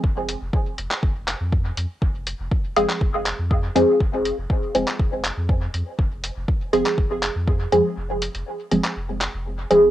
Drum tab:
HH |--x---x---x---x-|--x---x---x---x-|--x---x---x---x-|--x---x---x---x-|
CP |-------x--x-----|-------x--x-----|-------x--x-----|-------x--x-----|
BD |o---o---o---o---|o---o---o---o---|o---o---o---o---|o---o---o---o---|

HH |--xx--x---x---x-|
CP |-------x--x-----|
BD |----------------|